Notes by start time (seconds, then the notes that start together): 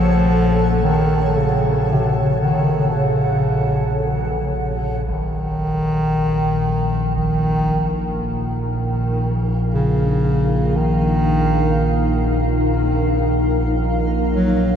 Already playing: A#1 F3 A4 C#5 F#5 A5
0.83 D#3
1.36 C#3
1.93 C#3
2.42 D#3
2.94 C#3
5.07 A#1 D#3 F#3 D#4, concert bass drum
5.75 A#4
5.98 F5
7.15 D#3, concert bass drum
9.74 C#3
10.76 D#3
14.32 F#3